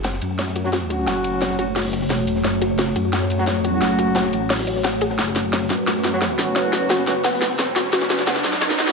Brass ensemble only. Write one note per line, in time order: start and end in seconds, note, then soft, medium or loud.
0.64 0.69 F#3 medium
0.64 0.69 C#4 medium
0.64 0.69 F#4 loud
0.90 1.57 F#3 medium
0.90 1.57 C#4 medium
0.90 1.57 F#4 medium
1.59 1.63 F#3 medium
1.59 1.63 C#4 medium
1.59 1.63 F#4 medium
3.39 3.43 F#3 medium
3.39 3.43 C#4 medium
3.39 3.43 F#4 loud
3.64 4.31 F#3 medium
3.64 4.31 C#4 medium
3.64 4.31 F#4 medium
6.13 6.18 F#3 medium
6.13 6.18 C#4 medium
6.13 6.18 F#4 loud
6.39 7.05 F#3 medium
6.39 7.05 C#4 medium
6.39 7.05 F#4 medium
7.07 7.12 F#3 medium
7.07 7.12 C#4 medium
7.07 7.12 F#4 medium
8.87 8.92 F#3 medium
8.87 8.92 C#4 medium
8.87 8.92 F#4 loud